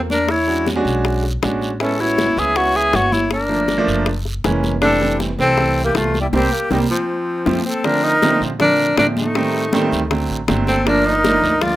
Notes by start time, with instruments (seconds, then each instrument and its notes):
Already playing: upright bass E2
0.10 tenor saxophone D4, flute A#4, high bongo, high conga, short guiro
0.29 tenor saxophone E4, flute C#5, high bongo, high conga, long guiro
0.47 grand piano G#3 C#4 D4 F#4, high bongo, high conga
0.67 high bongo, high conga, short guiro
0.76 grand piano G#3 C#4 D4 F#4
0.85 upright bass B1, short guiro
1.05 high bongo, high conga, long guiro
1.24 high bongo, high conga
1.42 upright bass A1, grand piano G#3 C#4 D4 F#4, high bongo, low bongo, high conga, short guiro
1.62 high bongo, short guiro
1.80 grand piano G#3 B3 C#4 E4, tenor saxophone C#4, flute A4, high bongo, high conga, long guiro
1.99 grand piano G#3 B3 C#4 F#4, tenor saxophone E4, flute C#5, high bongo, high conga
2.18 high bongo, high conga, short guiro
2.36 upright bass C#2, grand piano G#3 B3 C#4 E4, tenor saxophone G#4, flute E5, high bongo, high conga, short guiro
2.56 grand piano G#3 B3 C#4 E4, tenor saxophone F#4, flute C#5, high bongo, high conga, long guiro
2.75 tenor saxophone G#4, flute E5, high conga
2.93 upright bass G1, tenor saxophone F#4, flute C#5, high bongo, low bongo, high conga, short guiro
3.12 tenor saxophone E4, flute C#5, high bongo, high conga, short guiro
3.31 tenor saxophone D4, flute A#4, high bongo, high conga, long guiro
3.49 grand piano F3 A3 A#3 D4, high bongo, high conga
3.68 high bongo, high conga, short guiro
3.78 grand piano F3 A3 A#3 D4
3.87 upright bass F#1, short guiro
4.06 high bongo, long guiro
4.25 high bongo, high conga
4.44 upright bass F1, grand piano E3 G#3 A#3 C#4, high bongo, low bongo, high conga, short guiro
4.63 high bongo, high conga, short guiro
4.81 grand piano E3 G3 A3 C4, tenor saxophone D4, flute A4, high bongo, high conga, long guiro
5.01 grand piano E3 G3 A3 C4, high bongo
5.20 high bongo, high conga, short guiro
5.38 upright bass C2, grand piano E3 G3 A3 C4, tenor saxophone C4, flute A4, high bongo, high conga, short guiro
5.58 grand piano E3 G3 A3 C4, high bongo, high conga, long guiro
5.78 high conga
5.84 tenor saxophone A#3, flute G4
5.95 upright bass C2, tenor saxophone A3, flute F4, high bongo, low bongo, high conga, short guiro
6.14 high bongo, high conga, short guiro
6.21 tenor saxophone G3, flute E4
6.33 upright bass C2, grand piano G3 A#3 C4, tenor saxophone C4, flute G4, low bongo, high conga, long guiro
6.52 tenor saxophone A#3, flute G4
6.70 upright bass C2, grand piano G3 A#3 C4, tenor saxophone G3, flute D#4, low bongo, high conga, long guiro
6.90 tenor saxophone F3, flute C4
7.46 upright bass F2, grand piano F3 A3 C4, low bongo, high conga, long guiro
7.66 tenor saxophone C4, flute A4
7.84 grand piano D3 F3 A3 C4, tenor saxophone D4, flute A#4, high bongo, high conga, long guiro
8.03 tenor saxophone D#4, flute A#4, high conga
8.22 grand piano D3 F3 A3 C4, high bongo, high conga, short guiro
8.41 upright bass A#2, high conga, short guiro
8.59 grand piano D3 F3 A3 C4, tenor saxophone D4, flute A#4, high bongo, high conga, low conga, long guiro
8.80 high conga
8.96 upright bass A2, grand piano D3 F3 A3 C4, tenor saxophone D4, flute A#4, high bongo, low bongo, high conga, short guiro
9.17 tenor saxophone A3, flute D#4, high conga, short guiro
9.35 grand piano D#3 G3 A3 C4, high bongo, high conga, long guiro
9.54 high bongo, high conga
9.73 grand piano D#3 G3 A3 C4, high bongo, high conga, short guiro
9.92 upright bass D2, high bongo, short guiro
10.10 grand piano D3 F#3 A3 C4, high bongo, high conga, long guiro
10.29 upright bass A1, high conga
10.48 upright bass G1, grand piano D3 F#3 A3 C4, high bongo, low bongo, high conga, short guiro
10.67 tenor saxophone C4, flute A4, high bongo, high conga, short guiro
10.85 grand piano F3 A3 A#3 D4, tenor saxophone D4, flute A#4, high bongo, high conga, long guiro
11.05 tenor saxophone D#4, flute A#4, high conga
11.24 grand piano F3 A3 A#3 D4, high bongo, high conga, short guiro
11.42 upright bass D2, high conga, short guiro
11.62 grand piano F3 A3 A#3 D4, tenor saxophone F4, flute D5, high bongo, high conga, low conga, long guiro